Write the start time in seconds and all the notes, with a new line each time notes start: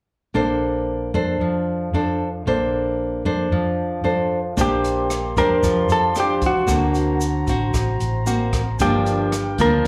0.34 A#1 A#3 D4 A4 C5
1.14 F2 D4 A4 C5
1.40 F2 F3
1.93 F2 D4 A4 C5
2.46 A#1 A#3 D4 A4 C5
3.25 F2 D4 A4 C5
3.52 F2 F3
4.04 F2 D4 A4 C5
4.57 A#1 A#3 D4 G4 C5 D5 C6, kick, closed hi-hat, shaker
4.61 G4
4.84 closed hi-hat, shaker
5.10 cross-stick, closed hi-hat, shaker
5.37 F2 D4 G4 A#4 C5, kick, closed hi-hat, shaker
5.63 F2 F3, kick, closed hi-hat, shaker
5.89 F2 A4, closed hi-hat, shaker
6.15 D4 G4 C5, cross-stick, closed hi-hat, shaker
6.20 G4
6.42 kick, closed hi-hat, shaker
6.46 F#4
6.67 D2 D3 A#3 C4 F#4 C5 A#5, kick, cross-stick, closed hi-hat, shaker
6.95 closed hi-hat, shaker
7.21 closed hi-hat, shaker
7.47 A1 C4 F#4, kick, closed hi-hat, shaker
7.74 A1, kick, cross-stick, closed hi-hat, shaker
8.00 A1, closed hi-hat, shaker
8.26 A#3 C4 F#4, closed hi-hat, shaker
8.53 kick, cross-stick, closed hi-hat, shaker
8.79 G1 G2 F3 A#3 D4 F4 G4 A#4 G5, kick, closed hi-hat, shaker
9.06 closed hi-hat, shaker
9.32 cross-stick, closed hi-hat, shaker
9.58 D2 F3 A#3 D4 A#4, kick, closed hi-hat, shaker